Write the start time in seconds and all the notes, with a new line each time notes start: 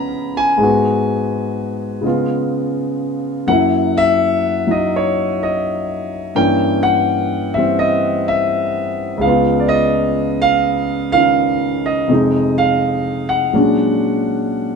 Already playing: C#3 F3 G#3 B3 C#4 F4 G#5 A#5 B5
0.37 G#5
0.58 G#2 G#3 B3
0.63 F#4
2.01 C#3 G#3 B3
2.06 F4
3.47 F#2 F#3 A#3 F#5
3.51 E4
3.98 E5
4.67 F#3 D#4 D#5
4.96 C#5
5.43 D#5
6.35 G2 E3 A#3 C#4 G5
6.83 F#5
7.54 E3 G3 E5
7.58 C4
7.79 D#5
8.28 E5
9.17 C#2 C#3
9.21 B3 F5
9.28 F4
9.60 D5
9.69 D#5
10.42 F5
11.12 D#3 C#4 F4 F5
11.86 D#5
12.08 F2 C3 G#3
12.13 D#4
12.58 F5
13.29 F#5
13.53 A#2 F#3 G#3 C#4 D4